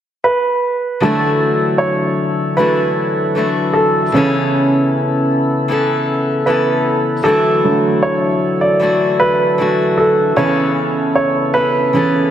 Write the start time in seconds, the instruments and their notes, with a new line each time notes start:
0.24 grand piano B4
1.00 steel-string acoustic guitar D3 E3 A3, grand piano D3 F#3 A3 A4, tonewheel organ D3 F#3 E4 A4
1.05 steel-string acoustic guitar D4 F#4
1.78 grand piano C#5
2.57 steel-string acoustic guitar E3 A3 D4 F#4, grand piano B4
3.35 steel-string acoustic guitar E3 A3 D4 F#4
3.73 grand piano A4
4.12 steel-string acoustic guitar C#3 E3 B3, tonewheel organ C#3 B3, grand piano C#3 E3 C#4
4.17 steel-string acoustic guitar C#4 A4
5.68 steel-string acoustic guitar E3 B3 C#4 A4
6.46 steel-string acoustic guitar E3 B3 C#4 A4, grand piano B4
7.23 steel-string acoustic guitar D3 E3 A3, tonewheel organ D3 F#3, grand piano A4
7.27 steel-string acoustic guitar D4 F#4
7.64 grand piano D3 F#3 A3
8.03 grand piano C#5
8.61 grand piano D5
8.80 steel-string acoustic guitar E3 A3 D4 F#4
9.20 grand piano B4
9.58 steel-string acoustic guitar E3 A3 D4 F#4
9.98 grand piano A4
10.36 steel-string acoustic guitar C#3 E3 B3 C#4 A4, grand piano C#3 E3 C#4 C#5, tonewheel organ C#3 B3 A4
11.15 grand piano C#5
11.53 steel-string acoustic guitar B3 C#4 A4, grand piano B4
11.93 grand piano C#3 E3 C#4, steel-string acoustic guitar E3 B3 C#4 A4